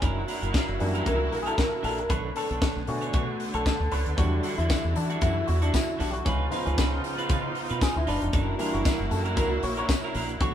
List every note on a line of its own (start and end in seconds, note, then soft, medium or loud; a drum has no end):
0.00 0.22 F#1 loud
0.00 2.08 A#3 medium
0.00 0.39 C#4 medium
0.00 0.21 D4 medium
0.00 2.08 E4 medium
0.00 0.22 E4 medium
0.00 2.08 F#4 medium
0.00 0.22 A#4 medium
0.00 kick loud
0.00 closed hi-hat medium
0.27 0.43 D4 medium
0.27 0.42 E4 medium
0.27 0.41 A#4 medium
0.27 open hi-hat medium
0.42 0.51 F#1 medium
0.42 0.51 D4 soft
0.42 0.52 E4 medium
0.42 0.53 A#4 medium
0.42 closed hi-hat soft
0.53 0.73 D4 medium
0.53 0.68 E4 medium
0.53 0.66 A#4 medium
0.53 kick loud
0.53 snare loud
0.53 closed hi-hat medium
0.68 0.78 F#1 medium
0.68 muted clean electric guitar stroke soft
0.79 1.01 F#2 medium
0.79 1.54 E3 soft
0.79 1.54 G3 medium
0.79 1.54 A#3 soft
0.79 1.54 D4 medium
0.79 muted clean electric guitar stroke soft
0.79 open hi-hat medium
0.95 1.04 D4 medium
0.95 1.05 E4 medium
0.95 1.06 A#4 medium
0.95 closed hi-hat soft
1.05 1.32 C#2 medium
1.05 1.26 D4 medium
1.05 1.20 E4 medium
1.05 1.19 A#4 medium
1.05 1.32 A#4 loud
1.05 kick loud
1.05 closed hi-hat medium
1.20 muted clean electric guitar stroke soft
1.31 1.52 A#1 loud
1.31 1.37 A#4 loud
1.31 muted clean electric guitar stroke soft
1.31 open hi-hat medium
1.43 1.46 G#4 medium
1.43 1.58 A#4 medium
1.43 closed hi-hat soft
1.47 1.57 D4 medium
1.47 1.57 E4 medium
1.47 1.59 A4 loud
1.58 1.83 A#4 medium
1.58 muted clean electric guitar stroke medium
1.58 kick loud
1.58 snare loud
1.58 closed hi-hat medium
1.72 muted clean electric guitar stroke soft
1.83 2.04 A#1 medium
1.83 2.03 D4 medium
1.83 1.98 E4 medium
1.83 1.99 A4 medium
1.83 1.97 A#4 medium
1.83 open hi-hat medium
1.98 2.11 A#4 medium
1.98 muted clean electric guitar stroke medium
1.98 closed hi-hat soft
2.09 2.30 B1 loud
2.09 6.21 D3 medium
2.09 4.16 A3 medium
2.09 4.16 B3 medium
2.09 2.29 D4 medium
2.09 2.29 A4 medium
2.09 2.37 B4 loud
2.09 2.30 C#5 loud
2.09 kick loud
2.09 closed hi-hat medium
2.36 2.51 D4 medium
2.36 2.90 A4 loud
2.36 2.50 A4 medium
2.36 2.48 C#5 medium
2.36 open hi-hat medium
2.50 2.59 B1 medium
2.50 2.60 D4 medium
2.50 2.61 A4 medium
2.50 2.62 C#5 medium
2.50 closed hi-hat soft
2.61 2.81 D4 medium
2.61 2.77 A4 medium
2.61 2.75 C#5 medium
2.61 kick loud
2.61 snare loud
2.61 closed hi-hat medium
2.76 2.85 B1 medium
2.76 muted clean electric guitar stroke soft
2.87 3.08 B2 medium
2.87 3.24 D3 soft
2.87 3.24 A3 soft
2.87 3.24 C#4 medium
2.87 3.13 F#4 medium
2.87 muted clean electric guitar stroke soft
2.87 open hi-hat medium
3.01 3.12 D4 medium
3.01 3.13 A4 medium
3.01 3.14 C#5 medium
3.01 closed hi-hat soft
3.13 3.34 B2 medium
3.13 3.33 D4 medium
3.13 3.56 F#4 medium
3.13 3.28 A4 medium
3.13 3.27 C#5 loud
3.13 kick loud
3.13 closed hi-hat medium
3.28 muted clean electric guitar stroke soft
3.39 muted clean electric guitar stroke soft
3.39 open hi-hat medium
3.54 3.63 B1 medium
3.54 3.65 D4 medium
3.54 3.93 A4 loud
3.54 3.65 A4 medium
3.54 3.65 C#5 medium
3.54 closed hi-hat soft
3.66 muted clean electric guitar stroke soft
3.66 kick loud
3.66 snare loud
3.66 closed hi-hat medium
3.80 3.89 D2 medium
3.80 muted clean electric guitar stroke soft
3.92 4.03 C#2 medium
3.92 4.11 D4 medium
3.92 4.06 A4 medium
3.92 4.16 B4 medium
3.92 4.05 C#5 medium
3.92 open hi-hat medium
4.06 4.16 D2 medium
4.06 muted clean electric guitar stroke soft
4.06 closed hi-hat soft
4.17 4.38 E2 medium
4.17 6.24 E3 medium
4.17 4.53 F#3 medium
4.17 4.37 G3 medium
4.17 4.54 G3 medium
4.17 4.37 D4 medium
4.17 4.54 D4 medium
4.17 6.24 E4 medium
4.17 6.24 F#4 medium
4.17 4.56 F#4 medium
4.17 4.38 F#4 medium
4.17 kick loud
4.17 closed hi-hat medium
4.17 tambourine soft
4.43 4.59 G3 medium
4.43 4.58 D4 medium
4.43 4.57 F#4 medium
4.43 open hi-hat medium
4.43 tambourine medium
4.58 4.67 E2 medium
4.58 4.68 G3 medium
4.58 4.69 D4 medium
4.58 4.97 E4 medium
4.58 4.70 F#4 medium
4.58 closed hi-hat soft
4.69 4.89 G3 medium
4.69 4.84 D4 medium
4.69 4.83 F#4 medium
4.69 kick loud
4.69 snare loud
4.69 closed hi-hat medium
4.69 tambourine medium
4.84 4.93 E2 medium
4.84 muted clean electric guitar stroke soft
4.96 5.16 E3 medium
4.96 5.23 D4 medium
4.96 muted clean electric guitar stroke soft
4.96 open hi-hat medium
4.96 tambourine medium
5.10 5.20 G3 medium
5.10 5.21 D4 medium
5.10 5.22 F#4 medium
5.10 closed hi-hat medium
5.21 5.42 F#2 medium
5.21 5.41 G3 medium
5.21 5.36 D4 medium
5.21 5.49 E4 medium
5.21 5.35 F#4 loud
5.21 kick loud
5.21 closed hi-hat medium
5.21 tambourine medium
5.36 muted clean electric guitar stroke soft
5.48 5.69 E2 medium
5.48 5.61 F#4 medium
5.48 muted clean electric guitar stroke soft
5.48 open hi-hat medium
5.48 tambourine soft
5.62 5.72 G3 medium
5.62 5.74 D4 medium
5.62 5.73 D4 medium
5.62 5.74 F#4 medium
5.62 closed hi-hat soft
5.74 6.01 E4 medium
5.74 muted clean electric guitar stroke soft
5.74 kick loud
5.74 snare loud
5.74 closed hi-hat medium
5.74 tambourine loud
5.88 muted clean electric guitar stroke soft
5.99 6.20 B1 loud
5.99 6.19 G3 medium
5.99 6.14 D4 medium
5.99 6.11 D4 medium
5.99 6.12 F#4 medium
5.99 open hi-hat medium
5.99 tambourine soft
6.11 6.26 F#4 medium
6.11 6.14 G4 medium
6.11 muted clean electric guitar stroke medium
6.11 closed hi-hat soft
6.25 6.46 C#2 loud
6.25 8.32 C#3 medium
6.25 8.32 B3 medium
6.25 6.50 C#4 medium
6.25 6.45 D#4 medium
6.25 8.32 D#4 medium
6.25 6.45 F4 medium
6.25 8.31 F4 medium
6.25 6.46 B4 medium
6.25 kick loud
6.25 closed hi-hat medium
6.25 tambourine soft
6.51 8.29 F3 medium
6.51 8.29 B3 soft
6.51 6.67 D#4 medium
6.51 8.29 D#4 medium
6.51 6.67 F4 medium
6.51 6.66 F4 medium
6.51 6.65 B4 medium
6.51 open hi-hat medium
6.51 tambourine medium
6.65 6.75 C#2 loud
6.65 7.14 C#4 medium
6.65 6.77 D#4 medium
6.65 6.78 F4 medium
6.65 6.79 B4 medium
6.65 closed hi-hat soft
6.78 6.98 C#2 medium
6.78 6.97 D#4 medium
6.78 6.93 F4 medium
6.78 6.92 B4 medium
6.78 kick loud
6.78 snare loud
6.78 closed hi-hat medium
6.78 tambourine medium
6.93 muted clean electric guitar stroke soft
7.04 muted clean electric guitar stroke soft
7.04 open hi-hat medium
7.04 tambourine medium
7.18 7.28 D#4 soft
7.18 7.29 F4 medium
7.18 7.30 B4 medium
7.18 closed hi-hat soft
7.29 7.50 C#3 medium
7.29 7.49 D#4 medium
7.29 7.45 F4 medium
7.29 7.43 B4 medium
7.29 kick loud
7.29 closed hi-hat medium
7.29 tambourine medium
7.45 muted clean electric guitar stroke soft
7.55 muted clean electric guitar stroke soft
7.55 open hi-hat medium
7.70 7.79 B2 medium
7.70 7.80 D#4 medium
7.70 7.81 F4 medium
7.70 7.82 B4 medium
7.70 closed hi-hat soft
7.81 7.97 G#4 medium
7.81 muted clean electric guitar stroke soft
7.81 kick loud
7.81 snare loud
7.81 closed hi-hat medium
7.81 tambourine medium
7.96 8.05 D2 medium
7.96 8.08 E4 medium
7.96 muted clean electric guitar stroke soft
8.07 8.19 F#1 medium
8.07 8.58 D4 medium
8.07 8.26 D#4 medium
8.07 8.21 F4 medium
8.07 8.20 B4 medium
8.07 open hi-hat medium
8.07 tambourine soft
8.21 8.31 F1 loud
8.21 muted clean electric guitar stroke soft
8.21 closed hi-hat soft
8.33 8.54 F#1 loud
8.33 10.39 A#3 medium
8.33 8.54 D4 medium
8.33 8.54 E4 medium
8.33 10.39 E4 medium
8.33 10.39 F#4 medium
8.33 8.55 A#4 medium
8.33 kick loud
8.33 closed hi-hat medium
8.33 tambourine soft
8.58 9.33 E3 medium
8.58 9.33 G3 soft
8.58 9.33 A#3 medium
8.58 8.73 D4 medium
8.58 9.33 D4 medium
8.58 8.73 E4 medium
8.58 8.72 A#4 medium
8.58 open hi-hat medium
8.58 tambourine medium
8.66 8.74 F4 medium
8.73 8.83 F#1 medium
8.73 8.83 D4 medium
8.73 8.84 E4 medium
8.73 9.12 F#4 medium
8.73 8.85 A#4 medium
8.73 closed hi-hat soft
8.84 9.04 D4 medium
8.84 8.99 E4 medium
8.84 8.98 A#4 medium
8.84 kick loud
8.84 snare loud
8.84 closed hi-hat medium
8.84 tambourine medium
8.99 9.09 F#1 medium
8.99 muted clean electric guitar stroke soft
9.10 9.38 F#2 medium
9.10 9.23 A4 medium
9.10 muted clean electric guitar stroke soft
9.10 open hi-hat medium
9.10 tambourine medium
9.25 9.35 D4 medium
9.25 9.36 E4 medium
9.25 9.37 A#4 medium
9.25 closed hi-hat soft
9.36 9.57 C#2 medium
9.36 9.56 D4 medium
9.36 9.51 E4 medium
9.36 9.64 A#4 medium
9.36 9.50 A#4 medium
9.36 kick loud
9.36 closed hi-hat medium
9.36 tambourine medium
9.51 muted clean electric guitar stroke soft
9.63 9.83 A#1 medium
9.63 9.77 C#5 loud
9.63 muted clean electric guitar stroke soft
9.63 open hi-hat medium
9.63 tambourine soft
9.77 9.88 D4 medium
9.77 9.88 E4 medium
9.77 9.89 A#4 medium
9.77 10.26 C#5 loud
9.77 closed hi-hat soft
9.89 muted clean electric guitar stroke soft
9.89 kick loud
9.89 snare loud
9.89 closed hi-hat medium
9.89 tambourine loud
10.04 10.13 D4 medium
10.04 10.15 E4 medium
10.04 10.15 A#4 medium
10.14 10.35 A#1 medium
10.14 10.34 D4 medium
10.14 10.30 E4 medium
10.14 10.29 A#4 loud
10.14 open hi-hat medium
10.14 tambourine soft
10.29 muted clean electric guitar stroke medium
10.29 closed hi-hat soft
10.40 10.54 B1 loud
10.40 10.54 D3 medium
10.40 10.54 A3 medium
10.40 10.54 B3 medium
10.40 10.54 D4 medium
10.40 10.54 F#4 loud
10.40 10.54 A4 medium
10.40 10.54 C#5 loud
10.40 kick loud
10.40 closed hi-hat medium
10.40 tambourine soft